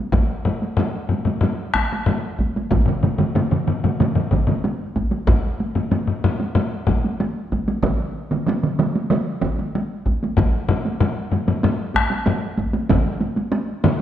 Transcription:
0.12 taiko medium
0.12 taiko low-mid medium
0.12 taiko high medium
0.45 taiko low-mid medium
0.45 taiko high soft
0.62 taiko high soft
0.77 taiko low-mid loud
0.77 taiko high medium
1.09 taiko low-mid medium
1.09 taiko high medium
1.25 taiko low-mid medium
1.25 taiko high medium
1.41 taiko low-mid loud
1.41 taiko high medium
1.74 taiko rim medium
1.74 taiko medium
1.74 taiko high medium
1.92 taiko high medium
2.06 taiko low-mid loud
2.06 taiko high medium
2.39 taiko medium
2.39 taiko high soft
2.56 taiko high medium
2.71 taiko medium
2.71 taiko low-mid medium
2.71 taiko mid medium
2.71 taiko high medium
2.86 taiko low-mid medium
2.86 taiko mid medium
3.03 taiko low-mid medium
3.03 taiko mid medium
3.03 taiko high medium
3.18 taiko low-mid medium
3.18 taiko mid medium
3.18 taiko high soft
3.35 taiko low-mid medium
3.35 taiko mid medium
3.35 taiko high medium
3.51 taiko low-mid medium
3.51 taiko mid medium
3.68 taiko low-mid medium
3.68 taiko mid medium
3.84 taiko low-mid medium
3.84 taiko mid medium
3.84 taiko high medium
4.00 taiko low-mid medium
4.00 taiko mid medium
4.00 taiko high medium
4.15 taiko low-mid medium
4.15 taiko mid medium
4.31 taiko medium
4.31 taiko low-mid medium
4.31 taiko mid medium
4.31 taiko high medium
4.47 taiko low-mid medium
4.47 taiko mid medium
4.47 taiko high soft
4.64 taiko high medium
4.96 taiko medium
4.96 taiko high medium
5.11 taiko high medium
5.27 taiko loud
5.27 taiko low-mid medium
5.27 taiko high medium
5.60 taiko high medium
5.75 taiko low-mid medium
5.75 taiko high medium
5.91 taiko low-mid medium
5.91 taiko high medium
6.07 taiko low-mid medium
6.24 taiko low-mid loud
6.24 taiko high medium
6.40 taiko high medium
6.55 taiko low-mid loud
6.55 taiko high medium
6.87 taiko medium
6.87 taiko low-mid loud
6.87 taiko high medium
7.04 taiko high medium
7.20 taiko high medium
7.52 taiko medium
7.52 taiko high medium
7.68 taiko high medium
7.83 taiko medium
7.83 taiko mid loud
7.83 taiko high medium
8.31 taiko mid medium
8.31 taiko high medium
8.46 taiko mid medium
8.46 taiko high medium
8.63 taiko mid medium
8.79 taiko mid medium
8.79 taiko high medium
8.96 taiko high medium
9.10 taiko mid loud
9.10 taiko high medium
9.41 taiko medium
9.41 taiko mid medium
9.59 taiko high medium
9.75 taiko high medium
10.06 taiko medium
10.06 taiko high medium
10.23 taiko high medium
10.37 taiko loud
10.37 taiko low-mid loud
10.37 taiko high medium
10.69 taiko low-mid loud
10.69 taiko high medium
10.85 taiko high medium
11.00 taiko low-mid loud
11.00 taiko high medium
11.32 taiko low-mid medium
11.32 taiko high medium
11.48 taiko low-mid medium
11.48 taiko high medium
11.63 taiko low-mid loud
11.63 taiko high medium
11.94 taiko rim medium
11.94 taiko medium
11.94 taiko high medium
12.10 taiko high medium
12.26 taiko low-mid medium
12.26 taiko high medium
12.58 taiko medium
12.58 taiko high medium
12.73 taiko high medium
12.90 taiko medium
12.90 taiko low-mid medium
12.90 taiko mid loud
12.90 taiko high medium
13.21 taiko high medium
13.36 taiko high medium
13.52 taiko high medium
13.84 taiko low-mid loud
13.84 taiko mid medium
13.84 taiko high medium

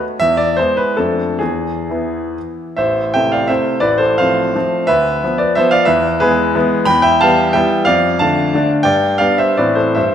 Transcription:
0.00 0.16 A3 soft
0.00 0.17 B3 soft
0.00 0.17 F#4 soft
0.20 0.57 E2 medium
0.20 0.38 E5 loud
0.37 0.57 D5 medium
0.57 0.94 G#3 soft
0.57 0.94 B3 soft
0.57 0.95 E4 soft
0.57 0.77 C5 medium
0.77 0.97 B4 medium
0.97 1.39 F2 soft
0.97 1.37 A3 soft
0.97 1.37 D4 soft
0.97 1.40 A4 medium
1.39 1.87 E2 soft
1.39 2.35 G#4 medium
1.90 2.75 E3 soft
1.90 2.76 B3 soft
1.90 2.76 E4 soft
2.77 3.13 A1 medium
2.77 3.12 C5 medium
2.77 3.13 E5 medium
3.14 3.47 C3 soft
3.14 3.47 A3 soft
3.14 3.47 E4 soft
3.14 3.31 E5 medium
3.14 3.32 G5 medium
3.32 3.48 D5 soft
3.32 3.49 F5 medium
3.48 3.79 C3 soft
3.48 3.79 A3 soft
3.48 3.80 E4 soft
3.48 3.80 C5 medium
3.48 3.81 E5 medium
3.80 4.19 A1 medium
3.80 3.99 B4 medium
3.80 4.00 D5 medium
3.98 4.18 A4 medium
3.98 4.17 C5 medium
4.18 4.52 F3 soft
4.18 4.52 A3 soft
4.18 4.52 C4 soft
4.18 4.83 C5 medium
4.18 4.87 F5 medium
4.56 4.85 F3 soft
4.56 4.85 A3 soft
4.56 4.85 C4 soft
4.87 5.22 D2 medium
4.87 5.36 B4 medium
4.87 5.39 E5 medium
5.24 5.54 F3 soft
5.24 5.54 B3 soft
5.38 5.55 B4 medium
5.38 5.55 D5 medium
5.55 5.85 F3 soft
5.55 5.85 B3 medium
5.55 5.71 C5 medium
5.55 5.72 E5 medium
5.71 5.86 D5 medium
5.71 5.87 F5 medium
5.85 6.20 E2 medium
5.85 6.18 B4 medium
5.85 6.20 E5 medium
6.20 6.52 E3 soft
6.20 6.53 G#3 soft
6.20 6.53 B3 medium
6.20 6.83 G#4 medium
6.20 6.87 B4 medium
6.55 6.84 E3 medium
6.55 6.84 G#3 medium
6.55 6.85 B3 medium
6.85 7.20 E2 medium
6.85 7.01 G5 medium
6.85 7.03 B5 loud
7.02 7.19 E5 medium
7.02 7.20 G5 medium
7.21 7.52 E3 soft
7.21 7.52 G3 soft
7.21 7.53 B3 medium
7.21 7.53 F5 medium
7.21 7.55 A5 medium
7.53 7.84 E3 medium
7.53 7.84 G3 medium
7.53 7.84 B3 medium
7.53 7.84 E5 medium
7.53 7.86 G5 medium
7.85 8.19 F2 medium
7.85 8.18 D5 medium
7.85 8.18 F5 medium
8.19 8.51 D3 soft
8.19 8.51 A3 soft
8.19 8.52 D4 medium
8.19 8.67 F5 medium
8.19 8.70 A5 medium
8.54 8.83 D3 medium
8.54 8.84 A3 medium
8.54 8.84 D4 medium
8.83 9.19 G2 medium
8.83 9.17 D5 medium
8.83 9.19 G5 medium
9.18 9.54 G3 soft
9.18 9.54 B3 soft
9.18 9.55 D4 soft
9.18 9.37 D5 medium
9.18 9.38 F5 medium
9.38 9.57 C5 medium
9.38 9.58 E5 medium
9.57 9.95 A2 medium
9.57 9.92 E3 soft
9.57 9.93 C4 soft
9.57 9.76 B4 medium
9.57 9.76 D5 medium
9.75 9.94 A4 soft
9.75 9.94 C5 medium
9.95 10.15 G2 medium
9.95 10.15 C5 medium
9.95 10.15 E5 medium

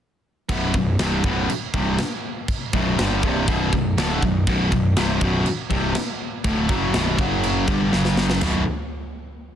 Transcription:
0.49 0.72 B0 medium
0.49 0.73 B1 medium
0.49 0.74 F#2 loud
0.49 0.74 B2 loud
0.49 kick loud
0.49 china medium
0.74 0.97 B0 medium
0.74 0.94 B1 medium
0.74 0.95 F#2 medium
0.74 kick loud
0.99 1.22 C1 loud
0.99 1.23 C2 medium
0.99 1.24 G2 loud
0.99 1.24 C3 loud
0.99 snare loud
0.99 china medium
1.24 1.47 B0 medium
1.24 1.48 B1 medium
1.24 1.48 F#2 loud
1.24 1.49 B2 loud
1.24 kick loud
1.49 muted picked electric bass stroke soft
1.49 muted distorted electric guitar stroke medium
1.49 china medium
1.74 1.97 C1 loud
1.74 1.98 C2 medium
1.74 1.98 G2 loud
1.74 1.99 C3 loud
1.74 kick loud
1.98 snare loud
1.98 china medium
2.48 kick loud
2.48 china medium
2.73 2.97 B0 medium
2.73 2.98 B1 loud
2.73 2.98 F#2 loud
2.73 2.98 B2 loud
2.73 kick loud
2.98 3.22 G1 medium
2.98 3.22 G2 medium
2.98 3.23 D3 loud
2.98 3.23 G3 loud
2.98 snare loud
2.98 china medium
3.23 3.47 C1 medium
3.23 3.47 C2 medium
3.23 3.47 G2 medium
3.23 3.48 C3 loud
3.23 kick loud
3.48 3.71 B0 loud
3.48 3.72 B1 loud
3.48 3.72 F#2 loud
3.48 3.72 B2 loud
3.48 kick loud
3.48 china medium
3.73 3.96 B0 medium
3.73 3.93 B1 medium
3.73 3.93 F#2 medium
3.73 kick medium
3.97 4.20 D1 loud
3.97 4.22 D2 loud
3.97 4.22 A2 loud
3.97 4.22 D3 loud
3.97 snare loud
3.97 china medium
4.22 4.46 B0 medium
4.22 4.42 B1 medium
4.22 4.43 F#2 medium
4.22 kick loud
4.47 4.70 B0 medium
4.47 4.71 B1 loud
4.47 4.71 F#2 loud
4.47 4.72 B2 loud
4.47 kick loud
4.47 china medium
4.72 4.95 B0 medium
4.72 4.92 B1 medium
4.72 4.92 F#2 medium
4.72 kick loud
4.97 5.20 C1 loud
4.97 5.21 C2 loud
4.97 5.21 G2 loud
4.97 5.21 C3 loud
4.97 snare loud
4.97 china medium
5.21 5.45 B0 loud
5.21 5.44 B1 medium
5.21 5.46 F#2 loud
5.21 5.46 B2 loud
5.21 kick loud
5.46 muted distorted electric guitar stroke medium
5.46 muted picked electric bass stroke soft
5.46 china medium
5.70 5.94 C1 medium
5.70 5.94 C2 loud
5.70 5.95 G2 loud
5.70 5.95 C3 loud
5.70 kick loud
5.95 snare loud
5.95 china medium
6.44 6.68 D1 medium
6.44 6.68 D2 loud
6.44 6.69 A2 loud
6.44 6.69 D3 loud
6.44 kick loud
6.44 china medium
6.68 6.92 F#1 medium
6.68 6.93 F#2 medium
6.68 6.93 C#3 loud
6.68 6.94 F#3 loud
6.68 kick loud
6.94 7.17 B0 loud
6.94 7.18 B1 medium
6.94 7.17 F#2 loud
6.94 7.18 B2 loud
6.94 snare loud
6.94 china medium
7.19 7.65 F#1 medium
7.19 7.67 F#2 medium
7.19 7.68 C#3 loud
7.19 7.68 F#3 loud
7.19 kick loud
7.44 china medium
7.68 7.91 G1 medium
7.68 7.92 G2 loud
7.68 7.92 D3 loud
7.68 7.92 G3 loud
7.68 kick loud
7.92 8.38 F#1 loud
7.92 8.41 F#2 medium
7.92 8.41 C#3 medium
7.92 8.41 F#3 loud
7.92 snare medium
8.05 snare medium
8.17 snare loud
8.30 snare loud
8.41 8.65 B0 medium
8.41 8.62 B1 loud
8.41 8.62 F#2 loud
8.41 8.62 B2 loud
8.41 snare loud
8.41 floor tom loud
8.41 crash medium

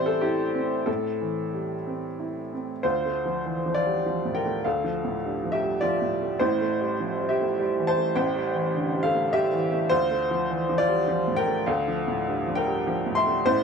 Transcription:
0.00 0.83 A2 medium
0.00 0.90 E3 medium
0.00 0.89 G3 medium
0.00 0.41 C4 medium
0.00 0.90 C5 loud
0.00 0.90 D5 loud
0.00 0.90 E5 loud
0.06 0.22 A4 medium
0.21 0.74 E4 medium
0.21 0.87 G4 medium
0.55 1.07 C4 soft
0.86 2.79 A2 medium
0.86 2.51 A4 medium
1.21 1.74 E3 soft
1.54 2.06 G3 soft
1.87 2.39 C4 soft
2.20 2.71 E4 soft
2.53 2.84 C4 soft
2.83 4.61 D2 medium
2.83 3.72 F4 medium
2.83 3.75 C5 medium
3.05 3.38 A3 medium
3.25 3.58 F3 soft
3.46 3.66 E3 soft
3.66 3.98 F3 soft
3.74 4.31 F4 medium
3.74 4.35 D5 loud
3.86 4.05 G3 soft
4.06 4.37 F3 medium
4.25 4.57 A2 soft
4.35 4.63 A#4 medium
4.35 4.64 G5 medium
4.46 4.77 A3 medium
4.64 6.37 D2 medium
4.64 5.49 A4 medium
4.64 5.53 F5 medium
4.84 5.16 F3 medium
5.04 5.36 A2 soft
5.25 5.44 G2 soft
5.44 5.75 F3 soft
5.52 5.80 G4 medium
5.52 5.82 E5 medium
5.62 5.82 G3 soft
5.81 6.13 F3 medium
5.81 6.37 F4 medium
5.81 6.40 D5 loud
6.02 6.33 A2 soft
6.22 6.41 A3 soft
6.40 8.12 A1 medium
6.40 8.13 A2 medium
6.40 7.26 E4 medium
6.40 7.29 C5 medium
6.61 6.92 A3 medium
6.80 7.12 G3 soft
7.00 7.20 F3 soft
7.20 7.51 G3 soft
7.29 7.84 G4 medium
7.29 7.87 E5 medium
7.41 7.60 A3 soft
7.59 7.90 G3 medium
7.79 8.10 E3 medium
7.87 8.15 C5 medium
7.87 8.17 A5 loud
7.97 8.28 A3 medium
8.15 9.87 A1 medium
8.15 9.87 A2 medium
8.15 9.01 C5 medium
8.15 9.04 G5 loud
8.36 8.67 G3 medium
8.55 8.87 E3 medium
8.75 8.95 D3 soft
8.94 9.26 G3 medium
9.03 9.31 A4 medium
9.03 9.33 F5 loud
9.15 9.34 A3 medium
9.33 9.64 G3 medium
9.33 9.87 G4 medium
9.33 9.91 E5 loud
9.53 9.83 E3 medium
9.72 9.91 A3 medium
9.89 11.64 D2 medium
9.89 10.75 F4 medium
9.89 10.79 C5 loud
10.11 10.42 A3 medium
10.31 10.62 F3 medium
10.50 10.70 E3 medium
10.69 11.01 F3 medium
10.78 11.34 F4 medium
10.78 11.37 D5 loud
10.89 11.08 G3 soft
11.08 11.40 F3 medium
11.28 11.60 A2 soft
11.36 11.65 A#4 medium
11.36 11.67 G5 loud
11.47 11.79 A3 medium
11.66 13.44 D2 medium
11.66 12.53 A4 medium
11.66 12.57 F5 medium
11.88 12.20 F3 medium
12.08 12.39 A2 medium
12.28 12.48 G2 medium
12.47 12.79 F3 medium
12.55 13.13 A#4 medium
12.55 13.17 G5 loud
12.67 12.87 G3 medium
12.87 13.19 F3 medium
13.06 13.39 A2 medium
13.15 13.45 E5 medium
13.15 13.47 C6 loud
13.27 13.47 A3 medium
13.46 13.63 A1 medium
13.46 13.63 A2 medium
13.46 13.63 E4 medium
13.46 13.63 C5 loud

